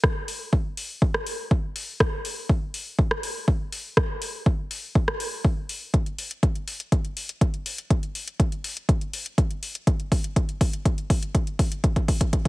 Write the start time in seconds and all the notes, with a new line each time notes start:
0.04 kick, cross-stick
0.28 open hi-hat
0.53 kick
0.77 open hi-hat
1.02 kick
1.14 cross-stick
1.27 open hi-hat
1.51 kick
1.76 open hi-hat
2.00 kick, cross-stick
2.25 open hi-hat
2.49 kick
2.74 open hi-hat
2.99 kick
3.11 cross-stick
3.23 open hi-hat
3.48 kick
3.72 open hi-hat
3.97 kick, cross-stick
4.22 open hi-hat
4.46 kick
4.71 open hi-hat
4.95 kick
5.08 cross-stick
5.20 open hi-hat
5.45 kick
5.69 open hi-hat
5.94 kick, closed hi-hat
6.06 closed hi-hat
6.18 open hi-hat
6.31 closed hi-hat
6.43 kick, closed hi-hat
6.55 closed hi-hat
6.68 open hi-hat
6.80 closed hi-hat
6.92 kick, closed hi-hat
7.05 closed hi-hat
7.17 open hi-hat
7.29 closed hi-hat
7.41 kick, closed hi-hat
7.54 closed hi-hat
7.66 open hi-hat
7.78 closed hi-hat
7.90 kick, closed hi-hat
8.03 closed hi-hat
8.15 open hi-hat
8.28 closed hi-hat
8.40 kick, closed hi-hat
8.52 closed hi-hat
8.64 open hi-hat
8.77 closed hi-hat
8.89 kick, closed hi-hat
9.01 closed hi-hat
9.13 open hi-hat
9.26 closed hi-hat
9.38 kick, closed hi-hat
9.51 closed hi-hat
9.63 open hi-hat
9.75 closed hi-hat
9.87 kick, closed hi-hat
10.00 closed hi-hat
10.12 kick, open hi-hat
10.24 closed hi-hat
10.36 kick, closed hi-hat
10.49 closed hi-hat
10.61 kick, open hi-hat
10.73 closed hi-hat
10.85 kick, closed hi-hat
10.98 closed hi-hat
11.10 kick, open hi-hat
11.23 closed hi-hat
11.35 kick, closed hi-hat
11.47 closed hi-hat
11.59 kick, open hi-hat
11.72 closed hi-hat
11.84 kick, closed hi-hat
11.96 kick, closed hi-hat
12.08 kick, open hi-hat
12.21 kick, closed hi-hat
12.33 kick, closed hi-hat